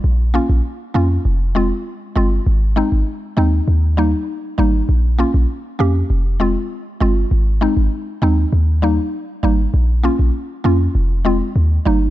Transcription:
<<
  \new Staff \with { instrumentName = "Synth pluck" } { \time 4/4 \key aes \major \tempo 4 = 99 r8 <bes des' f'>8 r8 <bes des' f'>8 r8 <aes c' f'>8 r8 <aes c' f'>8 | r8 <aes c' ees'>8 r8 <aes c' ees'>8 r8 <g bes ees'>8 r8 <g bes ees'>8 | r8 <bes des' f'>8 r8 <bes des' g'>8 r8 <aes c' f'>8 r8 <aes c' f'>8 | r8 <aes c' ees'>8 r8 <aes c' ees'>8 r8 <g bes ees'>8 r8 <g bes ees'>8 |
r8 <bes des' f'>8 r8 <bes des' f'>8 r8 <aes c' f'>8 r8 <g bes ees'>8 | }
  \new Staff \with { instrumentName = "808-style bass" } { \clef bass \time 4/4 \key aes \major bes,,8. bes,,16 r8 f,8 f,,4 r8 g,,8 | aes,,8. aes,,16 r8 ees,8 ees,4 r8 aes,,8 | bes,,8. bes,,16 r8 f,8 f,,4 r8 g,,8 | aes,,8. aes,,16 r8 ees,8 ees,4 r8 aes,,8 |
bes,,8. bes,,16 r8 f,8 f,,4 ees,8 g,,8 | }
>>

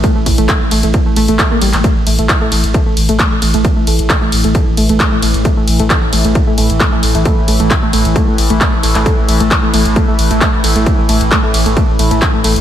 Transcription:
<<
  \new Staff \with { instrumentName = "Synth arpeggio sound" } { \time 4/4 \key c \mixolydian \tempo 4 = 133 a16 a16 r16 a16 a16 r16 a16 a16 r16 a16 a16 a16 r16 bes16 g16 r16 | a16 r16 a16 a16 r16 a16 a16 r16 a16 a16 r16 a16 a16 r16 a16 a16 | r16 a16 a16 r16 a16 a16 r16 a16 a16 r16 a16 a16 r16 a16 a16 r16 | a16 a16 r16 a16 a16 r16 a16 a16 r16 a16 a16 r16 a16 a16 r16 a16 |
a16 r16 a16 a16 r16 a16 a16 r16 a16 a16 r16 a16 a16 r16 a16 a16 | a16 r16 a16 a16 r16 a16 a16 r16 a16 a16 r16 a16 a16 r16 a16 a16 | r16 a16 a16 r16 a16 a16 r16 a16 a16 r16 a16 a16 r16 a16 a16 r16 | }
  \new Staff \with { instrumentName = "Synth drone" } { \clef bass \time 4/4 \key c \mixolydian <a, e>1 | <a, e>1~ | <a, e>1~ | <a, e>1~ |
<a, e>1~ | <a, e>1~ | <a, e>1 | }
  \new Staff \with { instrumentName = "Sub bass" } { \clef bass \time 4/4 \key c \mixolydian r16 a,,16 a,,16 a,,16 r16 a,,16 a,,16 a,,16 r16 a,,16 a,,16 a,,16 r16 a,,16 a,,16 a,,16 | r16 a,,16 a,,16 a,,16 r16 a,,16 a,,16 a,,16 r16 a,,16 a,,16 a,,16 r16 a,,16 a,,16 a,,16 | r16 a,,16 a,,16 a,,16 r16 a,,16 a,,16 a,,16 r16 a,,16 a,,16 a,,16 r16 a,,16 a,,16 a,,16 | r16 a,,16 a,,16 a,,16 r16 a,,16 a,,16 a,,16 r16 a,,16 a,,16 a,,16 r16 a,,16 a,,16 a,,16 |
r16 a,,16 a,,16 a,,16 r16 a,,16 a,,16 a,,16 r16 a,,16 a,,16 a,,16 r16 a,,16 a,,16 a,,16 | r16 a,,16 a,,16 a,,16 r16 a,,16 a,,16 a,,16 r16 a,,16 a,,16 a,,16 r16 a,,16 a,,16 a,,16 | r16 a,,16 a,,16 a,,16 r16 a,,16 a,,16 a,,16 r16 a,,16 a,,16 a,,16 r16 a,,16 a,,16 a,,16 | }
  \new DrumStaff \with { instrumentName = "Drums" } \drummode { \time 4/4 <hh bd>8 <hho bd cymr>16 hh16 <hc hh bd>8 <hho cymr>16 hh16 <hh bd>8 <hho cymr>16 hh16 <hc hh bd>8 <hho cymr>16 <hc hh>16 | <hh bd>8 <hho cymr>16 hh16 <hc hh bd>8 <hho cymr>16 hh16 <hh bd>8 <hho cymr>16 hh16 <hc hh bd>8 <hho cymr>16 hh16 | <hh bd>8 <hho cymr>16 hh16 <hc hh bd>8 <hho cymr>16 hh16 <hh bd>8 <hho cymr>16 hh16 <hc hh bd>8 <hho cymr>16 hh16 | <hh bd>8 <hho cymr>16 hh16 <hc hh bd>8 <hho cymr>16 hh16 <hh bd>8 <hho cymr>16 hh16 <hc hh bd>8 <hho cymr>16 hh16 |
<hh bd>8 <hho cymr>16 hh16 <hc hh bd>8 <hho cymr>16 hh16 <hh bd>8 <hho cymr>16 hh16 <hc hh bd>8 <hho cymr>16 <hc hh>16 | <hh bd>8 <hho cymr>16 hh16 <hc hh bd>8 <hho cymr>16 hh16 <hh bd>8 <hho cymr>16 hh16 <hc hh bd>8 <hho cymr>16 hh16 | <hh bd>8 <hho cymr>16 hh16 <hc hh bd>8 <hho cymr>16 hh16 <hh bd>8 <hho cymr>16 hh16 <hc hh bd>8 <hho cymr>16 hh16 | }
>>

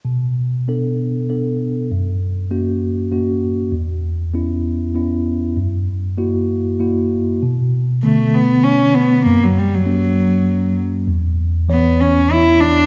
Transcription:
<<
  \new Staff \with { instrumentName = "Cello" } { \time 3/4 \key b \minor \tempo 4 = 98 r2. | r2. | r2. | r2. |
r4 a8 b8 cis'8 b8 | ais16 fis16 g16 fis4.~ fis16 r8 | r4 b8 cis'8 e'8 d'8 | }
  \new Staff \with { instrumentName = "Tine electric piano" } { \time 3/4 \key b \minor b,4 <b d' a'>4 <b d' a'>4 | fis,4 <ais cis' fis'>4 <ais cis' fis'>4 | e,4 <b cis' e'>4 <b cis' e'>4 | fis,4 <ais e' fis'>4 <ais e' fis'>4 |
b,4 <d a b>2 | fis,4 <fis ais cis'>2 | e,4 <e b cis''>2 | }
>>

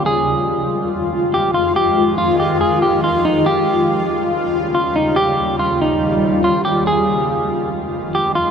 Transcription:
<<
  \new Staff \with { instrumentName = "Clean electric guitar" } { \time 4/4 \key f \minor \tempo 4 = 141 aes'2 r4 g'8 f'8 | g'4 f'8 g'8 aes'8 g'8 f'8 ees'8 | g'2 r4 f'8 ees'8 | g'4 f'8 ees'4. f'8 g'8 |
aes'2 r4 g'8 f'8 | }
  \new Staff \with { instrumentName = "Ambient pad" } { \clef bass \time 4/4 \key f \minor << { f'1~ | f'1~ | f'1~ | f'1 |
f'1 | } \\ { <f, ees aes>1~ | <f, ees aes>1 | <ees, des g>1~ | <ees, des g>1 |
<f, ees aes>1 | } >> }
>>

